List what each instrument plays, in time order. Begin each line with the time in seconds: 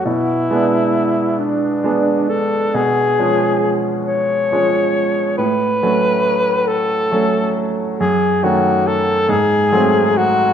0.05 grand piano B2, alto saxophone E4
0.51 grand piano G#3 B3 D4
1.39 alto saxophone D4
1.84 grand piano G#3 B3 D4
2.28 alto saxophone A4
2.74 grand piano B2, alto saxophone G#4
3.19 grand piano F3 G#3 C#4
4.07 alto saxophone C#5
4.52 grand piano F3 G#3 C#4
5.38 grand piano A2, alto saxophone B4
5.83 grand piano F#3 A3 C#4
6.67 alto saxophone A4
7.12 grand piano F#3 A3 C#4
7.99 grand piano F#2, alto saxophone G#4
8.43 grand piano D#3 A3 C#4, alto saxophone F#4
8.87 alto saxophone A4
9.29 grand piano G#2, alto saxophone G#4
9.72 grand piano F#3 A3 C4
10.17 alto saxophone F#4